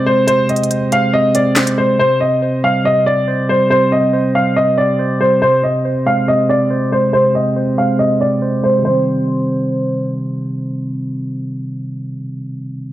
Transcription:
Already playing: tine electric piano C3 G#3 C4 C5
0.06 tine electric piano G#3, upright piano C5
0.27 tine electric piano C3, upright piano C5, closed hi-hat
0.49 tine electric piano C4, upright piano D#5, closed hi-hat
0.56 closed hi-hat
0.64 closed hi-hat
0.71 tine electric piano C5, closed hi-hat
0.92 tine electric piano G#3, upright piano F5, closed hi-hat
1.13 tine electric piano C3, upright piano D#5
1.35 tine electric piano C4, upright piano D5, closed hi-hat
1.56 tine electric piano C5, snare, clap
1.67 closed hi-hat
1.78 tine electric piano G#3, upright piano C5
1.99 tine electric piano C3, upright piano C5
2.21 tine electric piano C4, upright piano D#5
2.42 tine electric piano C5
2.64 tine electric piano G3, upright piano F5
2.85 tine electric piano C3, upright piano D#5
3.06 tine electric piano C4, upright piano D5
3.28 tine electric piano C5
3.49 tine electric piano G3, upright piano C5
3.70 tine electric piano C3, upright piano C5
3.92 tine electric piano C4, upright piano D#5
4.13 tine electric piano C5
4.35 tine electric piano G3, upright piano F5
4.56 tine electric piano C3, upright piano D#5
4.78 tine electric piano C4, upright piano D5
4.99 tine electric piano C5
5.20 tine electric piano G3, upright piano C5
5.42 tine electric piano C3, upright piano C5
5.63 tine electric piano C4, upright piano D#5
5.85 tine electric piano C5
6.06 tine electric piano G#3, upright piano F5
6.28 tine electric piano C3, upright piano D#5
6.49 tine electric piano C4, upright piano D5
6.71 tine electric piano C5
6.92 tine electric piano G#3, upright piano C5
7.13 tine electric piano C3, upright piano C5
7.35 tine electric piano C4, upright piano D#5
7.56 tine electric piano C5
7.77 tine electric piano G#3, upright piano F5
7.99 tine electric piano C3, upright piano D#5
8.20 tine electric piano C4, upright piano D5
8.42 tine electric piano C5
8.63 tine electric piano G#3, upright piano C5
8.79 tine electric piano C3 D#3
8.85 tine electric piano G3, upright piano C5
8.91 tine electric piano C4

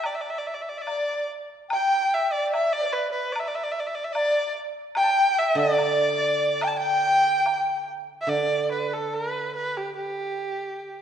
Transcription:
0.04 erhu D5, high woodblock
0.15 erhu E5
0.21 erhu D5
0.30 erhu E5
0.38 erhu D5
0.47 erhu E5
0.54 erhu D5
0.62 erhu E5
0.69 erhu D5
0.75 dizi E5, erhu E5
0.81 dizi D5, erhu D5
0.87 high woodblock, low woodblock
1.68 dizi G5, high woodblock
1.74 erhu G5
2.14 erhu E5
2.32 dizi D5, erhu D5
2.52 erhu E5, dizi E5, high woodblock, low woodblock
2.73 dizi D5, erhu D5
2.81 dizi B4
2.85 dizi D5
2.92 erhu B4
3.12 dizi B4, erhu B4
3.32 erhu D5, high woodblock
3.40 erhu E5
3.48 erhu D5
3.55 erhu E5
3.63 erhu D5
3.72 erhu E5
3.79 erhu D5
3.87 erhu E5
3.95 erhu D5
4.04 erhu E5
4.10 dizi D5, erhu D5
4.15 high woodblock, low woodblock
4.95 dizi G5, erhu G5, high woodblock
5.03 dizi A5
5.11 dizi G5
5.39 erhu E5, dizi E5
5.55 guzheng D3, erhu D5, dizi D5
5.78 high woodblock, low woodblock
6.61 dizi G5, erhu G5, high woodblock
6.67 erhu A5
6.77 erhu G5, dizi G5
7.46 high woodblock, low woodblock
8.21 erhu E5
8.27 guzheng D3, erhu D5
8.72 erhu B4
8.93 erhu A4
9.14 erhu B4
9.56 erhu B4
9.77 erhu G4
9.96 erhu G4

